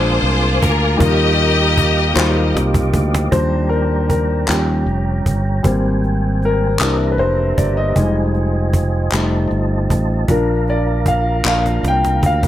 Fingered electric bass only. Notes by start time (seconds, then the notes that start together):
Already playing: A#1
0.23 C2
0.63 D2
1.00 D#2
2.16 D#2
2.55 C2
2.95 D2
3.32 D#2
4.49 D#2
4.86 F1
5.26 G1
5.64 G#1
6.79 C2
7.18 F1
7.58 G1
7.96 F1
9.12 F1
9.51 G1
9.90 A1
10.28 A#1
11.45 A#1
11.83 C2
12.22 D2